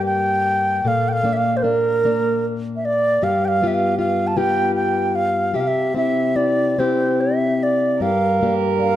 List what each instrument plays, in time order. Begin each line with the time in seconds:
Already playing: steel-string acoustic guitar G2 A#3 D4 G4
0.06 flute G5
0.84 steel-string acoustic guitar A#2 A4, flute F5
1.08 flute G5
1.13 flute F5
1.23 steel-string acoustic guitar A#3 D4
1.33 flute E5
1.37 flute F5
1.57 flute C5
1.63 steel-string acoustic guitar D4, flute A#4
2.05 steel-string acoustic guitar A#3 D4
2.76 flute E5
2.85 flute D5
3.22 steel-string acoustic guitar G2 G4, flute F5
3.45 flute F5 G5
3.62 steel-string acoustic guitar B3 F4 G4
3.67 flute E5
3.74 flute F5
3.99 steel-string acoustic guitar F4, flute F5
4.27 flute A5
4.36 steel-string acoustic guitar B3 F4 G4, flute G5
4.75 flute G5
5.15 flute F5
5.54 steel-string acoustic guitar C3 G4, flute E5
5.60 flute F5
5.67 flute E5
5.94 steel-string acoustic guitar C4 E4 G4, flute E5
6.36 steel-string acoustic guitar E4, flute D5
6.78 steel-string acoustic guitar C4 E4 G4, flute C5
7.21 flute E5
7.63 flute D5
8.00 steel-string acoustic guitar G2 G4, viola A#4, flute F5
8.41 steel-string acoustic guitar A#3 D4 G4
8.79 steel-string acoustic guitar D4, flute F5